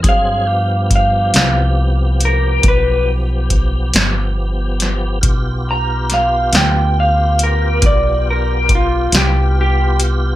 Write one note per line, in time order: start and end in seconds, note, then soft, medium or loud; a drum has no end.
0.03 1.30 G2 medium
0.03 0.47 F#3 soft
0.03 0.47 C4 soft
0.03 0.47 G#4 medium
0.03 kick medium
0.03 closed hi-hat medium
0.09 0.90 F5 medium
0.47 5.19 F3 medium
0.47 5.19 B3 medium
0.47 5.19 G4 soft
0.91 kick medium
0.91 closed hi-hat soft
0.96 2.19 F5 medium
1.34 2.60 C2 medium
1.34 snare medium
1.34 closed hi-hat medium
2.20 closed hi-hat soft
2.25 2.65 A#4 medium
2.63 3.90 B1 medium
2.63 kick medium
2.63 closed hi-hat medium
2.68 3.08 B4 medium
3.50 kick medium
3.50 closed hi-hat soft
3.94 5.20 G1 medium
3.94 snare medium
3.94 closed hi-hat medium
4.80 snare soft
4.80 closed hi-hat medium
5.21 6.49 B1 medium
5.21 10.36 B3 soft
5.21 10.36 F4 medium
5.21 10.36 G4 soft
5.21 kick medium
5.21 closed hi-hat medium
5.71 6.11 A#5 medium
6.10 snare soft
6.10 closed hi-hat soft
6.14 6.54 F5 medium
6.53 7.79 D2 medium
6.53 6.97 G5 medium
6.53 snare medium
6.53 closed hi-hat medium
7.00 7.40 F5 medium
7.39 closed hi-hat soft
7.43 7.84 A#4 medium
7.82 9.09 B1 medium
7.82 8.26 D5 medium
7.82 kick medium
7.82 closed hi-hat medium
8.30 8.70 A#4 medium
8.69 kick medium
8.69 closed hi-hat soft
8.75 9.14 F4 medium
9.12 10.36 C2 medium
9.12 snare medium
9.12 closed hi-hat medium
9.17 9.57 G4 medium
9.61 10.01 G4 medium
10.00 closed hi-hat soft